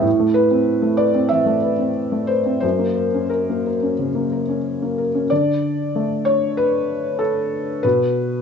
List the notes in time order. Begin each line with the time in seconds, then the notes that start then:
0.02 A2
0.20 A3
0.34 B4
0.51 C4
0.82 A3
0.97 B4 D5
1.15 C4
1.29 E3 E5
1.46 A3
1.62 B4
1.78 C4
2.12 A3
2.27 B4 C5
2.46 C4
2.60 F#2 C5
2.79 A#3
2.95 A#4
3.14 C#4
3.30 A#4
3.50 A#3
3.66 A#4
3.82 C#4
3.99 C#3
4.15 A#3
4.32 A#4
4.49 C#4
4.82 A#3
4.98 A#4
5.15 C#4
5.30 D3 D5
5.95 A3
6.25 C#5
6.57 B4
7.19 A4
7.83 B2 B4